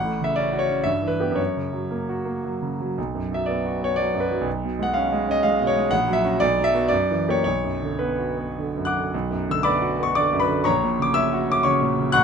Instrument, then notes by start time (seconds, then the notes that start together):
grand piano
Already playing: A1 F#5
0.05 A2
0.21 C#3 E5
0.36 C#4 D5
0.53 F#4
0.59 C#5
0.69 C#4
0.84 G2 E5
1.02 E3
1.07 B4
1.20 B3 G4
1.31 F#2
1.36 C#5
1.57 C#3
1.73 F#3
1.91 A#3
2.09 F#4
2.25 A#3
2.44 F#3
2.62 C#3
2.80 F#3
2.98 B1
3.15 F#2
3.32 F#3 E5
3.46 B3 D5
3.65 F#4
3.82 B3 C#5
3.96 F#3 D5
4.14 F#2
4.20 B4
4.31 F#3
4.41 B1
4.65 B2
4.79 G#3 F#5
4.94 C#4 F5
5.12 G#3
5.28 C#4 D#5
5.43 G#3 F5
5.61 B2
5.67 C#5
5.76 G#3
5.91 A#1 F#5
6.07 F#3
6.13 E5
6.25 C#4 F#4
6.40 B1 D5
6.58 F#3
6.64 E5
6.74 B3 F#4
6.88 F#2 D5
7.10 E3
7.28 A#3 G4 C#5
7.44 B1 C#5
7.64 F#2
7.82 D3
7.99 B3 B4
8.19 F#4
8.37 B3
8.58 D3
8.77 F#2
8.85 F#5 D6 F#6
8.96 D3
9.14 B1
9.31 F#2
9.49 D3 E6
9.63 B3 D5 B5 D6
9.82 F#4
10.00 B3 C#6
10.15 D3 D5 D6
10.33 F#2
10.40 B4 B5
10.49 D3
10.64 A#1 C#5 A#5 C#6
10.83 A#2
10.99 C#3 D6
11.14 C#4 E5 E6
11.33 F#4
11.50 C#4 D6
11.63 C#3 C#5 C#6
11.81 A#2
11.98 C#3
12.12 A1 F#5 C#6 F#6